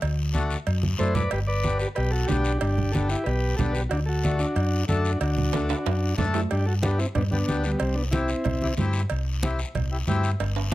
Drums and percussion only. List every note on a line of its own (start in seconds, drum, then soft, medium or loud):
0.01 cowbell loud
0.01 long guiro medium
0.34 high conga medium
0.34 short guiro medium
0.50 short guiro medium
0.67 cowbell medium
0.67 long guiro medium
0.83 high conga medium
0.99 low timbale medium
0.99 short guiro medium
1.15 low conga loud
1.15 short guiro medium
1.31 cowbell loud
1.31 long guiro medium
1.63 high conga medium
1.63 short guiro medium
1.79 short guiro medium
1.96 cowbell medium
1.96 long guiro medium
2.28 high conga medium
2.28 low timbale medium
2.28 short guiro medium
2.44 short guiro medium
2.61 cowbell loud
2.61 long guiro medium
2.78 low conga medium
2.93 high conga medium
2.93 short guiro medium
3.09 short guiro medium
3.26 cowbell medium
3.26 long guiro medium
3.58 high conga medium
3.58 low conga medium
3.58 short guiro medium
3.75 short guiro medium
3.91 cowbell loud
3.91 long guiro medium
4.24 high conga medium
4.24 short guiro medium
4.39 short guiro medium
4.56 cowbell medium
4.56 long guiro medium
4.88 high conga medium
4.88 short guiro medium
5.05 short guiro medium
5.21 cowbell loud
5.21 long guiro medium
5.37 low conga medium
5.53 high conga medium
5.53 high timbale medium
5.53 short guiro medium
5.69 high timbale loud
5.69 short guiro medium
5.86 cowbell medium
5.86 high timbale medium
5.86 long guiro medium
6.18 high conga medium
6.18 low conga medium
6.18 low timbale loud
6.18 short guiro medium
6.34 low timbale loud
6.34 short guiro medium
6.51 cowbell medium
6.51 high conga soft
6.51 long guiro medium
6.83 high conga loud
6.83 short guiro medium
6.99 short guiro medium
7.15 cowbell medium
7.15 high conga soft
7.15 low conga medium
7.15 long guiro medium
7.32 high conga medium
7.48 high conga medium
7.48 short guiro medium
7.64 short guiro medium
7.80 cowbell loud
7.80 high conga soft
7.80 long guiro medium
8.12 high conga loud
8.12 short guiro medium
8.28 short guiro medium
8.44 cowbell medium
8.44 high conga soft
8.44 low conga medium
8.44 long guiro medium
8.62 high conga medium
8.77 high conga medium
8.77 low timbale medium
8.77 short guiro medium
8.93 short guiro medium
9.10 cowbell medium
9.10 high conga soft
9.10 long guiro medium
9.43 high conga loud
9.43 short guiro medium
9.59 short guiro medium
9.75 cowbell medium
9.75 high conga soft
9.75 low conga medium
9.75 long guiro medium
10.07 high conga medium
10.07 low timbale medium
10.07 short guiro medium
10.24 short guiro medium
10.40 cowbell medium
10.40 high conga soft
10.40 high timbale medium
10.40 long guiro medium
10.56 high timbale medium